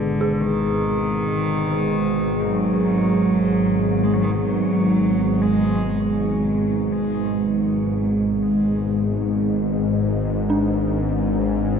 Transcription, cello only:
0.00 0.42 D3 medium
0.41 2.44 D#3 medium
2.43 4.05 F#3 medium
4.04 4.15 G#3 medium
4.14 4.24 F#3 medium
4.22 4.33 D#3 medium
4.31 4.40 F#3 medium
4.42 5.43 F#3 medium
5.42 6.16 G#3 medium

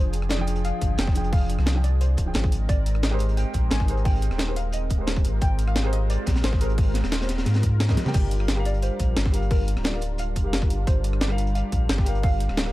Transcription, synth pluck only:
0.00 0.32 C5 medium
0.31 0.66 D5 medium
0.65 0.96 F5 loud
0.99 1.34 G5 loud
1.33 1.85 F5 loud
1.84 2.01 D5 medium
2.01 2.48 C5 loud
2.69 3.04 D5 loud
3.03 3.38 D#5 medium
3.37 3.72 G5 loud
3.71 4.03 G#5 loud
4.05 4.58 G5 loud
4.56 4.64 F5 loud
4.74 5.21 D#5 loud
5.42 5.68 G5 loud
5.67 5.91 F5 loud
5.93 6.00 D#5 medium
6.10 6.45 D5 loud
6.44 6.60 C5 medium
6.61 7.76 A#4 medium
8.15 8.41 G5 loud
8.41 8.64 F5 loud
8.66 8.74 D5 medium
8.83 9.53 C5 medium
9.51 9.86 A#4 medium
9.85 10.17 D5 medium
10.20 10.67 F5 loud
10.87 11.22 C5 loud
11.21 11.56 D5 medium
11.55 11.90 F5 loud
11.89 12.24 G5 loud
12.23 12.71 F5 loud

